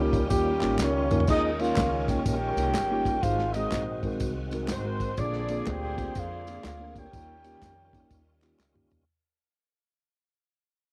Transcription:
Already playing: C#2 D#3 G3 A#3 C#4 F4 G4
0.00 D#4 F4 A#4
0.13 kick, ride, tambourine
0.29 D#2 G3 A#3 C#4 D#4 F4 G4, kick, ride, tambourine
0.61 G#1 A#3 C#4 D#4 F4 A#4, clap, ride, tambourine
0.78 C#2 C#4 F4 G4 C#5, snare, clap, tambourine
1.11 A#3 C#4 D#4 F4 A#4, mid tom, tambourine
1.20 floor tom
1.27 D#2 D#3 G#3 A#3 C#4 D#4 F4 G#4 A#4 D#5, kick, crash, tambourine
1.59 A#3 C#4 D#4 F4 G#4 A#4 C#5 F5, ride, tambourine
1.76 C#2, kick, snare, clap, ride, tambourine
2.08 A#3 C#4 D#4 F4 G5, kick, snare, ride, tambourine
2.26 A#1 G4 A#4 C#5 G5, kick, ride, tambourine
2.56 C2 A#3 C#4 D#4 F4 A#4, ride, tambourine
2.74 G1, snare, clap, ride, tambourine
2.91 A#3 C#4 D#4 F4 G4
3.05 kick, ride, tambourine
3.21 G#1 G#2 G#3 C4 D#4 F4 F#4 C5 F5, kick, ride, tambourine
3.25 G#4
3.39 snare
3.53 G#3 C4 D#4 F#4 G#4 C5 D#5, ride, tambourine
3.72 A#1, kick, snare, clap, ride, tambourine
4.03 G#3 C4 D#4 F#4 A#4, kick, ride, tambourine
4.20 C2, kick, ride, tambourine
4.51 G#3 C4 D#4 F#4 A#4, ride, tambourine
4.68 G#1 C4 D#4 F#4 C5, snare, clap, ride, tambourine
4.84 G#3 C4 D#4 F#4 A#4
5.00 kick, ride, tambourine
5.17 A#1 A#2 D3 A#3 C4 D4 F4 G#4 D5, kick, ride, tambourine
5.33 snare
5.48 A#3 C4 D4 F4 G#4, ride, tambourine
5.66 D2 G4 C5 D5 G5, kick, snare, clap, ride, tambourine
5.97 A#3 C4 D4 F4 G#4, kick, snare, ride, tambourine
6.15 F2 F4 G#4 D5 F5, kick, ride, tambourine
6.47 A#3 C4 D4 F4 G#4, ride, tambourine
6.64 D2 F4 F5, snare, clap, ride, tambourine
6.79 A#3 C4 D4 F4 A#4
6.95 G4 A#4 C#5 G5, kick, ride, tambourine
7.11 D#2 D#3 G3 A#3 C#4 D#4 F4, kick, ride, tambourine
7.15 G4
7.44 A#3 C#4 D#4 F4 G4, ride, tambourine
7.62 F2, kick, snare, clap, ride, tambourine
7.93 A#3 C#4 D#4 F4 G4, kick, ride, tambourine
8.10 D#2, kick, ride, tambourine
8.42 A#3 C#4 D#4 F4 G4, clap, ride, tambourine
8.59 C#2, snare, clap, tambourine
8.74 A#3 C#4 D#4 F4 G4, mid tom
8.91 floor tom, tambourine

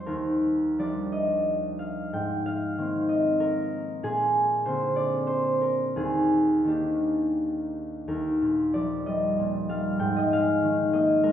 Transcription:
Already playing: F2 G3 A3 D#4 F4 F5
0.00 C5
0.06 D#2 A#4
0.79 F3 G3 D4 D5
1.12 D#5
1.79 F5
2.13 G#2 G5
2.46 F5
2.78 D#3 A#3 C4
3.09 D#5
3.40 A#4
4.03 A#2 G#4
4.65 D3 A#3 C4 C5
4.96 D5
5.27 C5
5.61 A#4
5.96 D#2 G#4
6.64 D#3 A#3 D4
6.69 G4
8.08 D#2 A#4
8.42 A#2
8.74 F3 D5
9.06 G3 D#5
9.39 A#2
9.69 G3 F5
9.99 G#2 G5
10.16 D#5
10.32 G#3 F5
10.62 D#3
10.93 A#3 D#5
11.23 G#3 A#4

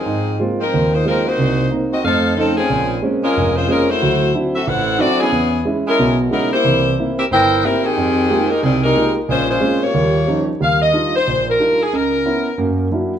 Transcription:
Already playing: F3 C4 D#4 G#4
0.06 G#2
0.40 G#3 A#3 C4 F4
0.60 F3 C4 D#4 A#4
0.74 D#2
0.93 A#3 D#4 F4 C5
1.05 F3 G#3 A#3 C4 D#4 F4 A#4
1.26 A#3 D#4 F#4 C5
1.38 C2
1.71 A#3 C4 D#4
1.93 C4 F#4 A#4 D#5
2.04 F2 A3 D#4 A4 C5 F5
2.37 F3 A3 C4 C#4 D#4 A4
2.58 F3 C4 C#4 G#4
2.70 A#1
3.02 G#3 A#3 C4 C#4
3.23 G#3 C#4 F4 A#4
3.37 F1
3.56 G#3 C#4 F4 C5
3.68 G#3 A#3 C4 C#4 F4 A#4
3.89 A3 E4 F#4 C5
4.02 D2 F#3
4.34 F#3 C4 D4 E4
4.54 C4 F#4 A4 E5
4.67 A1 E4 A4 C5 F#5
4.98 F#3 C4 D4 E4 F#4 A4 D5
5.21 E3 B3 C#4 G#4
5.32 E2
5.65 G#3 C#4 E4
5.87 G#3 C#4 E4 A#4
5.99 B1 B2
6.31 F#3 G#3 B3 C#4 D#4 E4 A#4
6.52 A#3 E4 G4 C5
6.65 C2 E3
6.99 A#3 C4 E4
7.19 C4 G4 A#4 E5
7.31 G1 E4 A#4 C5 G5
7.63 G3 A#3 C4 E4 A#4
7.84 D#3 C4 G4 G#4
7.97 F2
8.30 G#3 A#3 D#4 F4 G4
8.49 G#3 D#4 G4 A#4
8.63 C2 D#3 G3 C4 G#4
8.84 G#3 D#4 G4 A#4
8.96 G#3 A#3 D#4 F4 G4
9.29 A#1 G#3 C#4 F4 C5
9.49 G#3 C#4 F4 C5
9.60 G#3 A#3 C4 C#4
9.82 A#3 F4 G4 C#5
9.94 D#2 G3
10.27 F3 G3 C#4 D#4
10.60 D#2 G3 F5
10.82 D#5
10.93 G3 D4 D#4 F4
11.16 C5
11.27 A#1
11.49 A#4
11.60 G3 D4 D#4 F4
11.83 G#4
11.93 C#2 C#3 A#4
12.25 B3 C#4 E4
12.58 F#2 A#3
12.91 F#3 A#3 D4 E4

